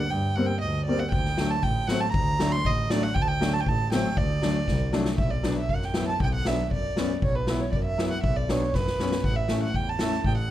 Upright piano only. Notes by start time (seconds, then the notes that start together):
0.36 G3 A#3 C4
0.87 G3 A#3 C4
1.39 F#3 A3 D4
1.89 F#3 A3 C4
2.39 F#3 A3 D4
2.91 F#3 A3 D4
3.40 F#3 A3 D4
3.93 F#3 A3 C4
4.42 F#3 A3 D4
4.93 F#3 A3 D4
5.43 F#3 B3 D4
5.94 F#3 B3 E4
6.46 F#3 B3 D4
6.96 F#3 B3 C#4
7.48 F#3 B3 E4
7.98 F#3 B3 E4
8.49 F#3 B3 D4
9.00 F#3 B3 C#4
9.49 A3 C#4 E4
9.99 A3 C#4 E4